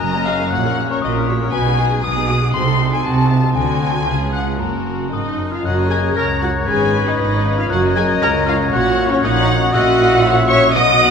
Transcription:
Already playing: harp F#2 A#3 C#4 F#4 C#5
0.00 double bass section F#1, cello section F#2, viola section C#4 F#4, harp A#4, violin section D#5 A#5, glockenspiel A#5
0.12 viola section A#3 A#4, harp C#5
0.25 viola section C#4 F#4, violin section F5, harp F#5, glockenspiel F6
0.38 viola section A#3 A#4, harp C#5
0.51 double bass section A#1, cello section A#2, harp A#2, viola section A#3 F#4, violin section C#5 F#5, glockenspiel F#6
0.64 harp A#3, viola section C#4 A#4
0.76 viola section A#3 F#4, harp C#4
0.89 viola section C#4 A#4, harp F#4, violin section C#5, glockenspiel C#6
1.02 double bass section A#1, cello section A#2, viola section A#3 F#4, harp A#4, violin section A#4 D#5, glockenspiel D#6
1.15 viola section C#4 A#4, harp C#5
1.27 viola section A#3 F#4, violin section C#5, harp F#5
1.40 viola section C#4 A#4, harp C#5
1.52 double bass section B1, harp B2, cello section B2, viola section B3 F#4, violin section B4 G#5, glockenspiel G#5
1.65 harp G#3, viola section D#4 G#4
1.78 viola section B3 F#4, harp D#4, violin section G#4
1.90 viola section D#4 G#4, harp F#4
2.02 double bass section B1, cello section B2, viola section B3 F#4, harp G#4, glockenspiel D#6, violin section D#6
2.16 viola section D#4 G#4, harp D#5
2.28 viola section B3 F#4, harp F#5
2.41 viola section D#4 G#4, harp D#5
2.53 double bass section C2, harp C3, cello section C3, viola section C4 F#4, violin section A4 C6, glockenspiel C6
2.66 harp A3, viola section D#4 A4
2.79 viola section C4 F#4, harp D#4
2.92 viola section D#4 A4, harp F#4, violin section G#5, glockenspiel G#5
3.04 double bass section C2, cello section C3, viola section C4 F#4, violin section F#4 A5, harp A4, glockenspiel A5
3.17 viola section D#4 A4, harp D#5
3.29 viola section C4 F#4, violin section F4, harp F#5
3.43 viola section D#4 A4, harp D#5
3.55 double bass section D2, cello section D3, harp D3, viola section C4 F#4, violin section F#4 G#5, glockenspiel G#5
3.68 harp C4
3.81 harp F#4
3.94 harp C5
4.07 double bass section C#2, harp C#3, cello section C#3, viola section B3 F4, violin section G#4
4.20 harp B3
4.33 harp C#4, violin section F#5, glockenspiel F#6
4.46 harp F4
4.59 double bass section F#1, cello section F#2, harp F#2, viola section A#3 F#4, violin section F#4 A#4, glockenspiel A#5
4.72 harp A#3
4.86 harp C#4
4.99 harp F#4
5.12 cello section G#2, viola section D#4, harp A#4, violin section D#5, glockenspiel D#6
5.24 harp C#5
5.37 cello section F#2, harp F#5
5.50 viola section F4, harp C#5, violin section F5, glockenspiel F6
5.63 double bass section F#1, harp F#2, cello section F#2, french horn section C#4 A#4, viola section F#4, oboe C#5, violin section D#5 F#5, flute A#5, glockenspiel F#6
5.77 harp A#3
5.90 harp C#4, viola section G#4, violin section G#5, glockenspiel G#6
6.03 harp F#4
6.15 cello section C#2, double bass section C#2, harp A#4, viola section A#4, violin section C#5 A#5, glockenspiel A#6
6.41 viola section F#4, harp F#5, violin section F#5, glockenspiel F#6
6.66 double bass section G#1, harp G#2, cello section G#2, viola section G#4, violin section B4 G#5, french horn section B4, flute B5, glockenspiel G#6
6.80 harp B3
6.93 harp C#4
7.06 viola section D#4, harp F4, violin section D#5, glockenspiel D#6
7.17 double bass section G#1, cello section G#2, viola section D#4, harp B4, glockenspiel D#6
7.22 violin section D#5
7.44 harp F5
7.56 viola section F4, harp C#5, violin section F5, glockenspiel F6
7.69 double bass section F#1, harp F#2, cello section F#2, french horn section C#4 A#4, viola section F#4, oboe C#5, violin section D#5 F#5, flute A#5, glockenspiel F#6
7.83 harp A#3
7.96 viola section G#4, violin section G#5, glockenspiel G#6
8.08 harp F#4
8.20 cello section C#2, double bass section C#2, harp A#4, viola section A#4, violin section A#5, glockenspiel A#6
8.34 harp C#5
8.46 viola section F4, violin section F5, harp F#5, glockenspiel F6
8.60 harp C#5
8.71 double bass section A#1, cello section A#2, harp A#2, french horn section F#4, viola section F#4, violin section C#5 F#5, flute F#5, glockenspiel F#6
8.86 harp A#3
8.98 harp C#4
9.10 viola section C#4, harp F#4, violin section C#5, glockenspiel C#6
9.22 double bass section A#1, cello section A#2, viola section D#4, harp A#4, violin section D#5 F#5, glockenspiel D#6
9.36 harp C#5
9.49 harp F#5
9.62 harp C#5
9.72 double bass section A#1, cello section A#2, harp A#2, french horn section C#4, viola section F#4, violin section D#5 F#5, oboe E5, glockenspiel F#6
9.86 harp C#4
9.99 harp E4
10.12 harp F#4
10.24 violin section C#5, harp C#5
10.37 harp E5
10.49 viola section C#5, violin section E5 C#6, harp F#5, glockenspiel C#7
10.62 harp E5
10.74 double bass section B1, cello section B2, harp B2, french horn section B3 F#4, viola section D#5, oboe D#5, violin section D#5 D#6, flute F#5, glockenspiel D#7
10.88 harp B3
11.01 harp D#4, violin section F#5

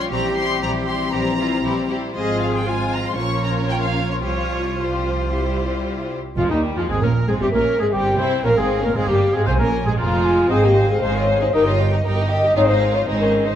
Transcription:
Already playing: viola section G3 F4
0.10 double bass section A#1, french horn section E3 C4, viola section G3 E4, violin section G4 C5 A#5, cello section G4
0.35 viola section G3 E4, violin section G4 C5 C6
0.61 double bass section A#1, viola section G3 E4, violin section G4 C5 A#5
0.86 viola section G3 E4, violin section G4 C5 C6
1.12 double bass section A#1, viola section G3 E4, cello section G4, violin section G4 C5 A#5
1.37 viola section G3 E4, cello section F4, violin section G4 C5
1.62 double bass section A#1, viola section G3 E4, cello section E4, violin section G4 C5
1.88 viola section G3 E4, violin section G4 C5, cello section G4
2.14 double bass section G#1, french horn section F3 C4, viola section G#3 F4, violin section F4 C5 D#5, cello section G#4
2.40 violin section F5
2.55 violin section G5
2.65 french horn section F3 C4, viola section G#3 F4, violin section F4 C5 G#5, cello section F4
2.92 violin section A#5
3.05 violin section C6
3.16 double bass section A#1, french horn section F3 F4, viola section F3 F4, cello section C#4, violin section A#4 C#5 C#6
3.43 violin section A#5
3.70 violin section G5
3.83 violin section F5
4.10 violin section C#5
4.22 double bass section C2, viola section F3 F4, french horn section G3 F4, cello section F4, violin section G4 C5 C#5
4.77 viola section F3 F4, french horn section G3 F4, violin section G4 C5
5.30 french horn section G3 E4, viola section G3 E4, violin section G4 C5
6.37 double bass section F1, cello section F2, viola section F3, violin section G#3 F4, french horn section F4, oboe F4, clarinet F4
6.50 double bass section D#2, cello section D#2, viola section D#3, violin section G3 D#4, french horn section D#4, clarinet D#4, oboe D#4
6.76 cello section F2, viola section F3, violin section G#3 F4, oboe F4, clarinet F4, french horn section F4
6.87 double bass section G#1, cello section G#2, viola section G#3, violin section C4 G#4, french horn section G#4, clarinet G#4, oboe G#4
7.01 double bass section A#1, cello section A#2, viola section A#3, violin section C#4 A#4, french horn section A#4, clarinet A#4, oboe A#4
7.27 cello section G#2, viola section G#3, violin section C4 G#4, french horn section G#4, clarinet G#4, oboe G#4
7.40 double bass section G1, cello section G2, viola section G3, violin section C4 G4, french horn section G4, clarinet G4, oboe G4, flute E5
7.52 double bass section A#1, cello section A#2, viola section A#3, violin section C#4 A#4, french horn section A#4, clarinet A#4, oboe A#4
7.79 cello section G#2, viola section G#3, violin section C4 G#4, oboe G#4, clarinet G#4, french horn section G#4
7.92 double bass section G1, cello section G2, viola section G3, violin section C4 G4, clarinet G4, oboe G4, french horn section G4, flute G5
8.18 double bass section C2, cello section C3, viola section C4, violin section E4 C5, clarinet C5, french horn section C5, oboe C5
8.44 double bass section A#1, cello section A#2, viola section A#3, violin section C#4 A#4, clarinet A#4, french horn section A#4, oboe A#4, flute F5
8.56 double bass section G#1, cello section G#2, viola section G#3, violin section C4 G#4, oboe G#4, clarinet G#4, french horn section G#4
8.81 cello section A#2, viola section A#3, violin section C#4 A#4, clarinet A#4, oboe A#4, french horn section A#4
8.95 double bass section G#1, cello section G#2, viola section G#3, violin section C4 G#4, oboe G#4, clarinet G#4, french horn section G#4, flute F5
9.08 double bass section G1, cello section G2, viola section G3, violin section A#3 G4, oboe G4, clarinet G4, french horn section G4
9.34 cello section G#2, viola section G#3, violin section C4 G#4, oboe G#4, clarinet G#4, french horn section G#4
9.46 double bass section C2, cello section C3, viola section C4, violin section F4 C5, oboe C5, clarinet C5, french horn section C5, flute G#5
9.59 double bass section A#1, cello section A#2, viola section A#3, violin section C#4 A#4, oboe A#4, clarinet A#4, french horn section A#4
9.85 cello section G#2, viola section G#3, violin section C4 G#4, oboe G#4, clarinet G#4, french horn section G#4
9.98 double bass section F1, cello section F2, viola section F3, violin section G#3 F4, oboe F4, clarinet F4, french horn section F4, flute A#5
10.25 flute G#5
10.50 double bass section G#1, cello section G#2, violin section C4 G#5, clarinet C4, viola section D#4 C5, french horn section G#4, oboe D#5, flute F5
10.63 violin section A#3 D#5, viola section C4 G#4, french horn section G4
10.76 viola section D#4 C5, violin section G#5
10.88 viola section C4 G#4, violin section C4 D#5, french horn section G#4
11.01 double bass section G#1, cello section G#2, viola section D#4 C5, violin section D#4 G#5, french horn section C5
11.13 viola section C4 G#4, violin section F4 D#5, french horn section C#5
11.27 viola section D#4 C5, violin section G#5
11.39 viola section C4 G#4, violin section D#4 D#5, french horn section C5
11.52 double bass section G1, cello section G2, violin section D#4 G5, clarinet D#4, viola section G4 A#4, french horn section A#4, flute D#5, oboe D#5
11.65 viola section D#4 G4, violin section F4 D#5, french horn section C#5
11.78 viola section G4 A#4, violin section G5
11.91 viola section D#4 G4, violin section D#4 D#5, french horn section C5
12.04 double bass section G1, cello section G2, violin section D#4 G5, viola section G4 A#4, french horn section A#4
12.17 viola section D#4 G4, violin section D#5
12.29 viola section G4 A#4, violin section G4 G5, french horn section D#5
12.43 viola section D#4 G4, violin section D#5
12.56 double bass section G#1, cello section G#2, viola section C4 G#4, clarinet D#4, violin section F4 C5, french horn section C#5, oboe D#5, flute F5
12.67 viola section D#4 C5, violin section D#4 D#5, french horn section C5
12.81 viola section C4 G#4, violin section C5
12.94 viola section D#4 C5, violin section F4 D#5, french horn section C#5
13.07 double bass section G#1, cello section G#2, viola section C4 G#4, violin section D#4 C5, french horn section C5, flute D#5
13.19 violin section C#4 D#5, viola section D#4 C5, french horn section A#4
13.32 viola section C4 G#4, violin section C5
13.46 violin section D#4 D#5, viola section D#4 C5, french horn section C5

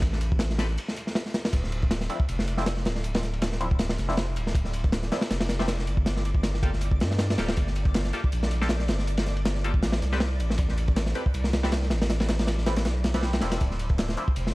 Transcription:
Already playing: sub bass A1
0.02 kick, closed hi-hat, ride
0.13 snare
0.21 closed hi-hat, ride
0.32 kick
0.39 snare, closed hi-hat, ride
0.50 snare
0.59 synth stab C4 G4 A4 B4, snare, closed hi-hat, ride
0.69 closed hi-hat
0.78 closed hi-hat, ride
0.88 snare
0.96 closed hi-hat, ride
1.07 snare
1.15 snare, ride
1.26 snare
1.34 snare, closed hi-hat, ride
1.45 snare, ride
1.53 sub bass D1, synth texture D5 D6, kick, closed hi-hat, crash, ride
1.64 snare
1.72 closed hi-hat, ride
1.82 kick, snare
1.91 snare, closed hi-hat, ride
2.01 snare, closed hi-hat
2.09 synth stab F3 C4 D4 E4, closed hi-hat, ride
2.20 kick
2.29 sub bass F1, closed hi-hat, ride
2.39 snare
2.48 closed hi-hat, ride
2.57 synth stab F3 C4 D4 E4, snare
2.66 snare, closed hi-hat, ride
2.77 snare
2.85 sub bass D1, snare, closed hi-hat, ride
2.95 snare
3.04 closed hi-hat, ride
3.14 snare, ride
3.23 snare, closed hi-hat
3.33 ride
3.42 snare, closed hi-hat, ride
3.52 snare
3.61 synth stab F3 C4 D4 E4, closed hi-hat, ride
3.71 kick
3.79 snare, closed hi-hat, ride
3.89 snare, ride
3.98 sub bass F1, snare, closed hi-hat, ride
4.09 synth stab F3 C4 D4 E4, snare
4.17 snare, ride
4.36 sub bass D1, closed hi-hat, ride
4.47 snare
4.55 sub bass D1, kick, closed hi-hat, ride
4.65 snare
4.73 closed hi-hat, ride
4.84 kick, snare
4.92 snare, closed hi-hat, ride
5.03 snare, closed hi-hat
5.12 synth stab F3 C4 D4 E4, snare, closed hi-hat, ride
5.21 snare, ride
5.30 sub bass F1, snare, closed hi-hat, ride
5.40 snare, ride
5.49 snare, closed hi-hat, ride
5.59 synth stab F3 C4 D4 E4, snare, ride
5.68 snare, closed hi-hat, ride
5.79 snare
5.87 sub bass G1, closed hi-hat, ride
5.97 kick
6.06 snare, closed hi-hat, ride
6.17 snare
6.25 closed hi-hat, ride
6.35 kick
6.43 snare, closed hi-hat, ride
6.54 snare
6.63 synth stab A#3 F4 G4 A4, kick, closed hi-hat, ride
6.73 snare
6.81 closed hi-hat, ride
6.91 kick
7.00 sub bass G2, snare, closed hi-hat, ride
7.11 snare
7.18 snare, closed hi-hat, ride
7.30 snare, ride
7.38 sub bass D1, synth stab A#3 F4 G4 A4, snare, closed hi-hat, ride
7.48 snare, ride
7.57 sub bass G1, kick, closed hi-hat, ride
7.67 snare
7.76 closed hi-hat, ride
7.85 kick, snare
7.94 snare, closed hi-hat, ride
8.04 snare, closed hi-hat
8.13 synth stab A#3 F4 G4 A4, closed hi-hat, ride
8.24 kick
8.32 sub bass A#1, closed hi-hat, ride
8.43 snare
8.51 closed hi-hat, ride
8.61 synth stab A#3 F4 G4 A4, snare
8.69 snare, closed hi-hat, ride
8.79 snare
8.88 sub bass G1, snare, closed hi-hat, ride
8.99 snare
9.07 closed hi-hat, ride
9.17 snare, ride
9.27 snare, closed hi-hat
9.37 ride
9.45 snare, closed hi-hat, ride
9.55 snare
9.64 synth stab A#3 F4 G4 A4, closed hi-hat, ride
9.74 kick
9.83 sub bass A1, snare, closed hi-hat, ride
9.92 snare, ride
10.02 sub bass C2, snare, closed hi-hat, ride
10.12 synth stab C4 G4 A4 B4, snare
10.20 snare, ride
10.40 sub bass A1, closed hi-hat, ride
10.50 snare
10.58 sub bass A1, kick, closed hi-hat, ride
10.69 snare
10.78 closed hi-hat, ride
10.88 kick, snare
10.96 snare, closed hi-hat, ride
11.06 snare, closed hi-hat
11.15 synth stab C4 G4 A4 B4, closed hi-hat, ride
11.26 kick
11.34 sub bass C2, closed hi-hat, ride
11.44 snare
11.53 snare, closed hi-hat, ride
11.63 synth stab C4 G4 A4 B4, snare, ride
11.72 snare, closed hi-hat, ride
11.82 snare
11.90 sub bass A1, snare, closed hi-hat, ride
12.02 snare, ride
12.10 snare, closed hi-hat, ride
12.20 snare, ride
12.29 snare, closed hi-hat, ride
12.39 snare, closed hi-hat, ride
12.47 snare, closed hi-hat, ride
12.58 snare
12.66 synth stab C4 G4 A4 B4, snare, closed hi-hat, ride
12.76 snare, closed hi-hat, ride
12.85 sub bass B1, snare, closed hi-hat, ride
13.04 snare, closed hi-hat, ride
13.14 synth stab C4 G4 A4 B4, snare, closed hi-hat, ride
13.23 snare, ride
13.33 snare, closed hi-hat, ride
13.41 sub bass E1, synth stab F3 C4 D4 E4, snare, closed hi-hat, ride
13.51 snare, closed hi-hat, ride
13.61 sub bass D1, synth texture C5 C6, kick, closed hi-hat, ride
13.71 snare
13.79 closed hi-hat, ride
13.89 kick, snare
13.98 snare, closed hi-hat, ride
14.08 snare, closed hi-hat
14.17 synth stab F3 C4 D4 E4, closed hi-hat, ride
14.28 kick
14.36 sub bass F1, closed hi-hat, ride
14.47 snare

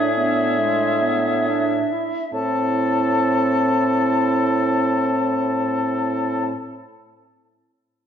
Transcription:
Already playing: bassoon A2, clarinet D4, french horn D4, oboe G#4, flute E5
0.17 clarinet B3
0.59 clarinet G#3
1.02 clarinet B3
1.49 clarinet D4
1.92 clarinet E4
2.33 bassoon A2, french horn C4, clarinet E4, oboe A4, flute A5

